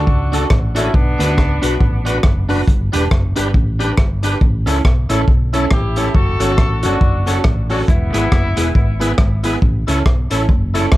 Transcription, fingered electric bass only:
0.07 C#2
0.51 A1
0.94 B1
1.19 D2
1.38 C#2
1.63 B1
1.81 A1
2.24 F#1
2.68 G1
2.93 E1
3.11 F#1
3.37 G1
3.54 A1
3.98 G1
4.41 A1
4.67 C#2
4.85 B1
5.10 A1
5.28 B1
5.71 A1
6.14 F#1
6.40 G1
6.58 A1
6.84 G1
7.01 F#1
7.45 A1
7.88 E1
8.14 G#1
8.32 F#1
8.57 E1
8.75 G#1
9.18 G#1
9.62 A1
9.88 C#2
10.06 B1
10.31 A1
10.49 F#1
10.92 C#2

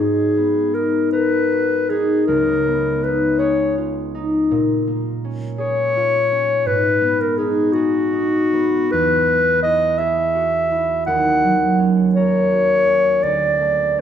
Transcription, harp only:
Already playing: B3 D#4 F#4 C#5
0.00 G#2
0.37 B3
0.74 D#4
1.13 A#4
1.52 F#4
1.90 D#4
2.28 C#2
2.66 B3
3.03 D#4
3.39 G#4
3.78 F4
4.15 D#4
4.51 A#2
4.87 A#3
5.25 C#4
5.58 G#4
5.97 F4
6.32 C#4
6.66 G#2
7.01 B3
7.39 D#4
7.75 G#4
8.13 D#4
8.53 B3
8.93 E2
9.28 B3
9.64 E4
10.00 G#4
10.35 F#4
10.71 E4
11.07 D#2
11.44 F#3
11.79 C#4
12.17 A#4
12.52 F#4
12.87 C#4
13.23 D2
13.61 A3
13.98 C#4

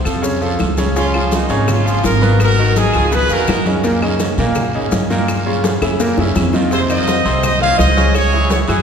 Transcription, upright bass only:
0.05 F2
0.60 C#2
1.50 G#1
2.04 G#1
2.94 C#2
3.30 F2
3.48 F#2
4.38 A#2
4.92 G2
5.82 F#2
6.18 F#2
6.36 F2
7.25 C2
7.79 C#2
8.68 F#2

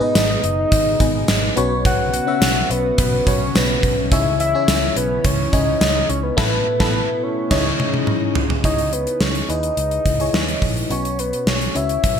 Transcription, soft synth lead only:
0.02 D#5
0.45 D#5
1.86 F#5
2.13 F#5
2.70 B4
2.99 B4
3.28 C#5
3.57 B4
4.12 E5
4.40 E5
4.97 B4
5.25 C#5
5.53 D#5
5.81 D#5
6.09 C#5
6.23 B4
6.38 B4
6.81 B4
7.23 C#5
8.64 D#5
8.93 B4
9.21 C#5
9.50 D#5
10.91 C#5
11.19 B4
11.48 C#5
11.76 E5

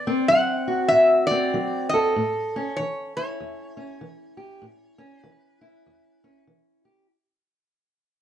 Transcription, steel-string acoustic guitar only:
Already playing: D3
0.07 C4
0.29 F#3
0.68 F#4
0.91 A2
1.31 C4
1.54 F#3
1.94 A4
2.16 A2
2.56 C#4
2.79 E3
3.17 E4
3.40 E2
3.77 C#4
4.01 E3
4.37 G4
4.62 A2
4.98 C#4
5.24 E3
5.61 E4
5.86 E2
6.24 C#4
6.47 E3
6.85 G4

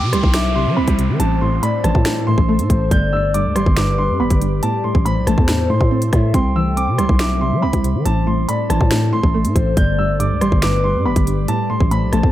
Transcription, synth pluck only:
Already playing: E3 C4
0.13 G3
0.56 C3
0.77 C4
0.99 C3
1.20 A2
1.41 A2
1.63 A2
1.84 E3
2.06 A2
2.27 A2
2.49 A3
2.70 A2
2.91 G2
3.13 G2
3.34 G2
3.56 G3
3.77 G2
3.98 G2
4.20 B3
4.41 G2
4.63 A2
4.84 A2
5.06 A2
5.27 A3
5.48 A2
5.70 A2
5.91 C4
6.13 A2
6.34 C4
6.56 E3
6.99 G3
7.41 C3
7.63 C4
7.84 C3
8.06 A2
8.27 A2
8.48 A2
8.70 E3
8.91 A2
9.13 A2
9.34 A3
9.55 A2
9.77 G2
9.99 G2
10.20 G2
10.41 G3
10.63 G2
10.84 G2
11.06 B3
11.27 G2
11.48 A2
11.70 A2
11.91 A2
12.13 A3

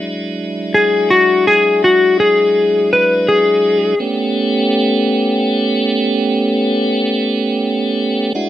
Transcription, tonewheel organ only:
Already playing: F#3 G#3 D4 E4
4.00 A3 B3 C#4 G4
8.35 G#3 D4 E4 F#4

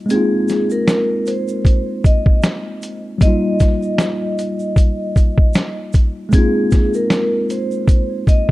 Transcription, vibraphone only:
0.11 G#4
0.72 A#4
1.27 C5
2.06 D#5
3.22 D#5
6.35 G#4
6.95 A#4
7.51 C5
8.29 D#5

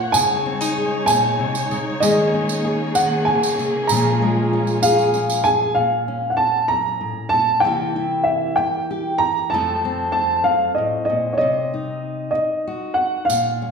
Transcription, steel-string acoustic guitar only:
Already playing: A#2 A#3 C#4
0.14 C#3
0.46 C4
0.61 D#4
0.78 G#4
1.08 A#2
1.39 C3
1.71 C#3
2.01 D#3 G#3 C#4 G#4
2.34 C#4
2.65 G#4
2.96 D#3
3.28 C#3
3.58 C3
3.91 A#2 F3 G#3 C#4 G#4
4.22 G#3
4.53 C#4
4.84 G#4
5.16 C#4
5.47 G#4
5.76 A#2
6.08 C#4
6.71 F#2
7.01 A2
7.33 A#2
7.64 C3 E3 A#3 E4 G4
7.96 E4
8.57 muted steel-string acoustic guitar stroke
8.91 G4
9.52 F2 F3 A3 C4 A4
9.85 C4
10.46 F#2
10.78 A2
11.10 A#2
11.41 C3
11.74 D#4
12.35 muted steel-string acoustic guitar stroke
12.67 F#4
13.29 A#2
13.62 C#4

